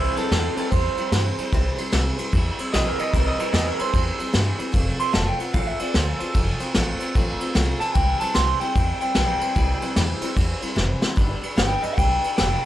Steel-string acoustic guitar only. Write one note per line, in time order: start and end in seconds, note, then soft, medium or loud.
0.00 0.17 C3 medium
0.00 0.17 E3 medium
0.00 0.17 G3 medium
0.00 0.17 C4 medium
0.00 0.16 E4 medium
0.00 0.15 C5 medium
0.17 0.31 G3 soft
0.17 0.31 C4 medium
0.17 0.32 E4 medium
0.17 0.32 C5 medium
0.31 0.57 C3 medium
0.31 0.57 E3 medium
0.31 0.58 G3 medium
0.31 0.58 C4 medium
0.31 0.58 E4 medium
0.31 0.57 C5 medium
0.58 0.71 G3 soft
0.58 0.72 C4 soft
0.58 0.72 E4 medium
0.58 0.73 C5 medium
0.72 0.98 G3 medium
0.72 0.98 C4 medium
0.72 0.97 E4 medium
0.72 0.97 C5 medium
0.98 1.12 G3 soft
0.98 1.12 C4 medium
0.98 1.13 E4 medium
0.98 1.12 C5 medium
1.13 1.38 C3 medium
1.13 1.38 E3 medium
1.13 1.38 G3 medium
1.13 1.38 C4 medium
1.13 1.38 E4 medium
1.13 1.38 C5 medium
1.39 1.53 G3 soft
1.39 1.53 C4 medium
1.39 1.53 E4 medium
1.39 1.53 C5 medium
1.53 1.78 C3 medium
1.53 1.78 E3 medium
1.53 1.77 G3 medium
1.53 1.77 C4 loud
1.53 1.77 E4 loud
1.53 1.75 C5 loud
1.76 1.91 G3 medium
1.76 1.92 C4 medium
1.76 1.92 E4 medium
1.76 1.92 C5 medium
1.92 2.18 C3 medium
1.92 2.18 E3 medium
1.92 2.18 G3 loud
1.92 2.17 C4 medium
1.92 2.17 E4 medium
1.92 2.16 C5 loud
2.17 2.31 G3 medium
2.17 2.31 C4 medium
2.17 2.32 E4 medium
2.17 2.32 C5 medium
2.32 2.58 G3 medium
2.32 2.58 C4 medium
2.32 2.58 E4 medium
2.32 2.58 C5 medium
2.59 2.73 G3 soft
2.59 2.73 C4 medium
2.59 2.73 E4 medium
2.59 2.73 C5 medium
2.73 2.99 C3 medium
2.73 2.99 E3 medium
2.73 2.99 G3 medium
2.73 2.98 C4 medium
2.73 2.98 E4 medium
2.73 2.97 C5 medium
2.98 3.12 G3 soft
2.98 3.12 C4 soft
2.98 3.13 E4 soft
2.98 3.13 C5 medium
3.13 3.39 C3 medium
3.13 3.39 E3 medium
3.13 3.39 G3 medium
3.13 3.38 C4 medium
3.13 3.37 E4 medium
3.13 3.36 C5 medium
3.38 3.52 G3 soft
3.38 3.53 C4 soft
3.38 3.53 E4 medium
3.38 3.53 C5 medium
3.53 3.79 C3 medium
3.53 3.79 E3 medium
3.53 3.79 G3 medium
3.53 3.79 C4 medium
3.53 3.78 E4 medium
3.53 3.78 C5 medium
3.79 3.92 G3 soft
3.79 3.93 C4 soft
3.79 3.94 E4 medium
3.79 3.94 C5 medium
3.94 4.19 G3 medium
3.94 4.19 C4 medium
3.94 4.18 E4 medium
3.94 4.18 C5 medium
4.19 4.32 G3 soft
4.19 4.32 C4 medium
4.19 4.33 E4 medium
4.19 4.33 C5 medium
4.33 4.59 C3 medium
4.33 4.59 E3 medium
4.33 4.59 G3 medium
4.33 4.58 C4 medium
4.33 4.57 E4 loud
4.33 4.57 C5 loud
4.58 4.72 G3 soft
4.58 4.72 C4 medium
4.58 4.73 E4 soft
4.58 4.72 C5 medium
4.72 4.98 F3 medium
4.72 4.99 A3 medium
4.72 4.98 C4 medium
4.72 4.96 F4 medium
4.72 4.96 C5 medium
4.97 5.11 C4 soft
4.97 5.12 F4 soft
4.97 5.13 C5 medium
5.12 5.39 F3 medium
5.12 5.39 A3 medium
5.12 5.39 C4 medium
5.12 5.38 F4 medium
5.12 5.37 C5 medium
5.38 5.53 C4 soft
5.38 5.53 F4 soft
5.38 5.53 C5 medium
5.53 5.79 A3 medium
5.53 5.80 C4 medium
5.53 5.79 F4 medium
5.53 5.78 C5 medium
5.79 5.94 C4 soft
5.79 5.94 F4 soft
5.79 5.94 C5 medium
5.94 6.20 F3 medium
5.94 6.20 A3 medium
5.94 6.20 C4 medium
5.94 6.19 F4 medium
5.94 6.18 C5 medium
6.19 6.34 C4 soft
6.19 6.34 F4 medium
6.19 6.34 C5 medium
6.34 6.60 F3 medium
6.34 6.60 A3 medium
6.34 6.60 C4 medium
6.34 6.59 F4 medium
6.34 6.58 C5 medium
6.59 6.74 C4 soft
6.59 6.74 F4 soft
6.59 6.74 C5 medium
6.74 7.00 F3 medium
6.74 7.00 A3 medium
6.74 6.99 C4 medium
6.74 6.98 F4 loud
6.74 6.97 C5 medium
6.98 7.15 C4 medium
6.98 7.15 F4 medium
6.98 7.14 C5 medium
7.15 7.41 A3 medium
7.15 7.40 C4 medium
7.15 7.40 F4 medium
7.15 7.39 C5 medium
7.40 7.54 C4 soft
7.40 7.55 F4 medium
7.40 7.54 C5 medium
7.55 7.80 F3 medium
7.55 7.81 A3 medium
7.55 7.81 C4 medium
7.55 7.80 F4 loud
7.55 7.80 C5 loud
7.81 7.94 C4 soft
7.81 7.95 F4 soft
7.81 7.94 C5 medium
7.95 8.21 C3 medium
7.95 8.21 E3 medium
7.95 8.21 G3 medium
7.95 8.21 C4 medium
7.95 8.20 E4 medium
7.95 8.19 C5 medium
8.21 8.34 G3 soft
8.21 8.34 C4 medium
8.21 8.34 E4 soft
8.21 8.35 C5 medium
8.34 8.60 C3 medium
8.34 8.61 E3 medium
8.34 8.60 G3 medium
8.34 8.60 C4 medium
8.34 8.59 E4 medium
8.34 8.58 C5 medium
8.60 8.73 G3 soft
8.60 8.74 C4 soft
8.60 8.75 E4 medium
8.60 8.75 C5 medium
8.75 9.01 G3 medium
8.75 9.01 C4 medium
8.75 9.01 E4 medium
8.75 9.00 C5 medium
9.01 9.16 G3 soft
9.01 9.15 C4 medium
9.01 9.16 E4 medium
9.01 9.16 C5 medium
9.16 9.42 C3 medium
9.16 9.42 E3 medium
9.16 9.42 G3 medium
9.16 9.41 C4 medium
9.16 9.41 E4 medium
9.16 9.40 C5 medium
9.41 9.54 G3 soft
9.41 9.55 C4 soft
9.41 9.55 E4 soft
9.41 9.55 C5 medium
9.55 9.81 C3 medium
9.55 9.81 E3 medium
9.55 9.81 G3 medium
9.55 9.81 C4 medium
9.55 9.81 E4 medium
9.55 9.80 C5 medium
9.81 9.96 G3 soft
9.81 9.96 C4 medium
9.81 9.97 E4 medium
9.81 9.96 C5 medium
9.96 10.22 C3 medium
9.96 10.22 E3 medium
9.96 10.22 G3 medium
9.96 10.22 C4 medium
9.96 10.21 E4 medium
9.96 10.21 C5 loud
10.22 10.35 G3 medium
10.22 10.36 C4 medium
10.22 10.36 E4 medium
10.22 10.37 C5 medium
10.36 10.62 G3 medium
10.36 10.61 C4 medium
10.36 10.61 E4 medium
10.36 10.60 C5 medium
10.61 10.75 G3 soft
10.61 10.75 C4 medium
10.61 10.75 E4 medium
10.61 10.75 C5 medium
10.75 11.01 C3 medium
10.75 11.02 E3 medium
10.75 11.02 G3 medium
10.75 11.01 C4 medium
10.75 11.01 E4 loud
10.75 11.00 C5 medium
11.01 11.14 G3 soft
11.01 11.16 C4 medium
11.01 11.16 E4 medium
11.01 11.17 C5 medium
11.16 11.42 G3 medium
11.16 11.42 D4 medium
11.16 11.41 G4 medium
11.16 11.40 B4 medium
11.41 11.55 D4 medium
11.41 11.56 G4 soft
11.41 11.56 B4 medium
11.56 11.82 G3 medium
11.56 11.82 D4 medium
11.56 11.81 G4 medium
11.56 11.80 B4 medium
11.81 11.95 D4 soft
11.81 11.96 G4 soft
11.81 11.96 B4 medium
11.96 12.22 G3 medium
11.96 12.23 D4 medium
11.96 12.23 G4 medium
11.96 12.21 B4 medium
12.22 12.37 D4 medium
12.22 12.37 G4 medium
12.22 12.37 B4 medium
12.37 12.63 G3 medium
12.37 12.63 D4 medium
12.37 12.63 G4 medium
12.37 12.63 B4 medium